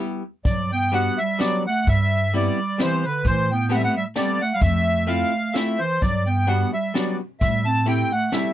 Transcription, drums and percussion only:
0.45 kick, closed hi-hat
0.93 closed hi-hat
1.40 snare, closed hi-hat
1.87 kick, closed hi-hat
2.35 closed hi-hat
2.80 snare, closed hi-hat
3.25 kick, closed hi-hat
3.70 closed hi-hat
4.16 snare, closed hi-hat
4.61 kick, closed hi-hat
5.08 closed hi-hat
5.56 snare, closed hi-hat
6.02 kick, closed hi-hat
6.50 closed hi-hat
6.95 snare, closed hi-hat
7.41 kick, closed hi-hat
7.87 closed hi-hat
8.32 snare, closed hi-hat

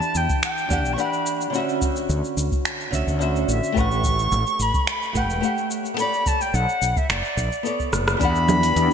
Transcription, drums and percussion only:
0.02 cabasa
0.15 cabasa
0.30 kick, cabasa
0.43 finger snap, cabasa
0.58 cabasa
0.71 kick, cabasa
0.85 cabasa
0.98 cabasa
1.13 cabasa
1.26 cabasa
1.41 cabasa
1.54 cabasa
1.69 cabasa
1.82 kick, cabasa
1.96 cabasa
2.10 cabasa
2.24 cabasa
2.38 cabasa
2.52 kick, cabasa
2.65 finger snap, cabasa
2.80 cabasa
2.93 kick, cabasa
3.08 cabasa
3.21 cabasa
3.36 cabasa
3.49 cabasa
3.64 cabasa
3.76 kick, cabasa
3.91 cabasa
4.04 kick, cabasa
4.19 cabasa
4.32 cabasa
4.47 cabasa
4.60 cabasa
4.74 kick, cabasa
4.87 finger snap, cabasa
5.02 cabasa
5.15 kick, cabasa
5.30 cabasa
5.43 cabasa
5.58 cabasa
5.71 cabasa
5.86 cabasa
5.99 cabasa
6.14 cabasa
6.26 kick, cabasa
6.41 cabasa
6.54 cabasa
6.69 cabasa
6.82 cabasa
6.96 kick, cabasa
7.10 finger snap, cabasa
7.25 cabasa
7.37 kick, cabasa
7.52 cabasa
7.65 cabasa
7.80 kick, cabasa
7.93 cross-stick, cabasa
8.08 cross-stick, cabasa
8.21 kick, open hi-hat, cabasa
8.35 cabasa
8.49 low conga, cabasa
8.63 open hi-hat, cabasa
8.76 open hi-hat, cabasa

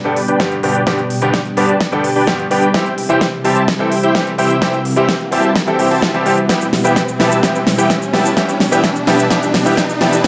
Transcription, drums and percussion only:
0.16 open hi-hat
0.28 closed hi-hat
0.40 kick, snare, closed hi-hat
0.52 closed hi-hat
0.63 open hi-hat
0.75 closed hi-hat
0.87 kick, snare, closed hi-hat
0.99 closed hi-hat
1.10 open hi-hat
1.22 closed hi-hat
1.34 kick, snare, closed hi-hat
1.45 closed hi-hat
1.57 open hi-hat
1.69 closed hi-hat
1.81 kick, snare, closed hi-hat
1.92 closed hi-hat
2.04 open hi-hat
2.16 open hi-hat
2.27 kick, snare, closed hi-hat
2.39 closed hi-hat
2.51 open hi-hat
2.63 closed hi-hat
2.74 kick, snare, closed hi-hat
2.86 closed hi-hat
2.98 open hi-hat
3.10 closed hi-hat
3.21 kick, snare, closed hi-hat
3.45 open hi-hat
3.56 closed hi-hat
3.68 kick, snare, closed hi-hat
3.92 open hi-hat
4.03 closed hi-hat
4.15 kick, snare, closed hi-hat
4.27 closed hi-hat
4.39 open hi-hat
4.50 closed hi-hat
4.62 kick, snare, closed hi-hat
4.74 closed hi-hat
4.85 open hi-hat
4.97 closed hi-hat
5.09 kick, snare, closed hi-hat
5.20 closed hi-hat
5.32 open hi-hat
5.44 closed hi-hat
5.56 kick, snare, closed hi-hat
5.67 closed hi-hat
5.79 open hi-hat
5.91 open hi-hat
6.02 kick, snare
6.14 closed hi-hat
6.26 open hi-hat
6.38 closed hi-hat
6.49 kick, snare, closed hi-hat, cabasa
6.61 closed hi-hat, cabasa
6.73 snare, open hi-hat
6.85 closed hi-hat, cabasa
6.96 kick, snare, closed hi-hat, cabasa
7.08 cabasa
7.20 snare, open hi-hat
7.32 closed hi-hat, cabasa
7.43 kick, snare, closed hi-hat, cabasa
7.55 cabasa
7.67 snare, open hi-hat
7.79 closed hi-hat, cabasa
7.90 kick, snare, closed hi-hat, cabasa
8.02 closed hi-hat, cabasa
8.14 snare, open hi-hat
8.25 closed hi-hat, cabasa
8.37 kick, snare, closed hi-hat, cabasa
8.49 closed hi-hat, cabasa
8.60 snare, open hi-hat
8.72 closed hi-hat, cabasa
8.84 kick, snare, closed hi-hat, cabasa
8.96 closed hi-hat, cabasa
9.07 snare, open hi-hat
9.19 closed hi-hat, cabasa
9.31 kick, snare, closed hi-hat, cabasa
9.42 closed hi-hat, cabasa
9.54 snare, open hi-hat
9.66 open hi-hat, cabasa
9.77 kick, snare, closed hi-hat, cabasa
9.89 closed hi-hat, cabasa
10.01 snare, open hi-hat
10.13 closed hi-hat, cabasa
10.24 kick

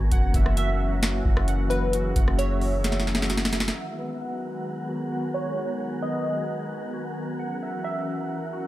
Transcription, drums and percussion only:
0.12 kick, closed hi-hat
0.34 kick, closed hi-hat
0.46 cross-stick
0.57 closed hi-hat
1.03 snare, closed hi-hat
1.25 kick
1.37 cross-stick
1.48 closed hi-hat
1.71 closed hi-hat
1.93 closed hi-hat
2.16 kick, closed hi-hat
2.28 cross-stick
2.39 closed hi-hat
2.61 open hi-hat
2.84 snare, closed hi-hat
2.92 snare
3.00 snare
3.07 snare
3.15 snare
3.22 snare
3.30 snare, closed hi-hat
3.37 snare
3.45 snare
3.53 snare, closed hi-hat
3.60 snare
3.68 snare

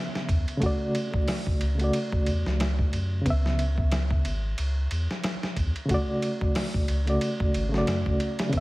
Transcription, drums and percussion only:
0.15 snare
0.29 kick, ride
0.48 ride
0.62 kick, ride
0.95 ride
1.14 kick
1.28 snare, open hi-hat
1.47 kick
1.61 ride
1.79 ride
1.93 ride
2.13 kick
2.26 ride
2.46 snare
2.60 snare, ride
2.79 kick
2.93 ride
3.26 kick, ride
3.46 snare
3.59 ride
3.78 kick
3.92 snare, ride
4.11 kick
4.25 ride
4.58 ride
4.91 ride
5.11 snare
5.24 snare, ride
5.43 snare
5.57 kick, ride
5.76 ride
5.89 kick, ride
6.22 ride
6.41 kick
6.55 snare, open hi-hat
6.74 kick
6.88 ride
7.07 ride
7.21 ride
7.40 kick
7.54 ride
7.74 snare
7.87 snare, ride
8.06 kick
8.20 ride
8.39 snare, ride
8.53 kick, ride

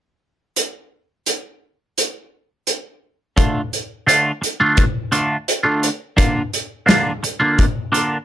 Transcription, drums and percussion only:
0.56 closed hi-hat
1.26 closed hi-hat
1.98 closed hi-hat
2.67 closed hi-hat
3.37 kick, closed hi-hat
3.73 closed hi-hat
4.08 closed hi-hat
4.43 closed hi-hat
4.77 kick, closed hi-hat
5.12 closed hi-hat
5.48 closed hi-hat
5.83 closed hi-hat
6.18 kick, closed hi-hat
6.53 closed hi-hat
6.88 snare, closed hi-hat
7.24 closed hi-hat
7.58 kick, closed hi-hat
7.94 closed hi-hat

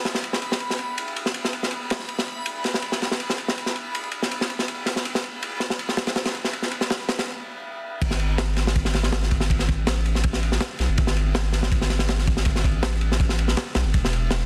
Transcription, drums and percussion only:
0.05 snare, ride
0.15 snare
0.24 ride
0.33 snare
0.42 ride
0.52 snare
0.60 ride
0.70 snare
0.79 ride
0.98 ride
1.08 ride
1.16 ride
1.26 snare
1.34 ride
1.45 snare
1.53 ride
1.63 snare
1.71 ride
1.90 snare, ride
1.99 snare
2.09 ride
2.19 snare
2.28 ride
2.46 ride
2.64 snare, ride
2.74 snare
2.82 ride
2.92 snare
3.02 snare, ride
3.11 snare
3.20 ride
3.30 snare
3.38 ride
3.48 snare
3.58 ride
3.66 snare
3.76 ride
3.95 ride
4.03 ride
4.12 ride
4.22 snare
4.31 ride
4.41 snare
4.50 ride
4.59 snare
4.68 ride
4.86 snare, ride
4.96 snare
5.05 ride
5.15 snare
5.24 ride
5.42 ride
5.60 snare, ride
5.70 snare
5.79 ride
5.89 snare
5.97 snare, ride
6.07 snare, ride
6.16 snare, ride
6.25 snare, ride
6.35 ride
6.44 snare
6.53 ride
6.62 snare
6.71 ride
6.81 snare
6.90 snare, ride
7.00 ride
7.09 snare, ride
7.19 snare, ride
8.02 kick, crash, ride
8.11 snare
8.19 ride
8.38 snare, ride
8.56 snare, ride
8.67 snare
8.75 kick, ride
8.85 snare
8.94 snare, ride
9.03 snare
9.12 snare, ride
9.23 snare
9.31 kick, ride
9.40 snare
9.50 kick, ride
9.59 snare
9.69 kick, ride
9.87 snare, ride
9.96 ride
10.06 ride
10.15 snare
10.23 kick, ride
10.33 snare
10.43 ride
10.52 snare
10.61 snare, ride
10.79 snare, ride
10.98 kick, ride
11.07 snare
11.17 ride
11.35 snare, ride
11.53 snare, ride
11.63 snare
11.72 kick, ride
11.81 snare
11.90 snare, ride
11.99 snare
12.08 snare, ride
12.18 snare
12.27 kick, ride
12.37 snare
12.45 kick, ride
12.56 snare
12.64 kick, ride
12.83 snare, ride
12.92 ride
13.01 ride
13.12 snare
13.20 kick, ride
13.29 snare
13.39 ride
13.48 snare
13.57 snare, ride
13.75 snare, ride
13.94 kick, ride
14.05 snare
14.13 ride
14.31 snare, ride

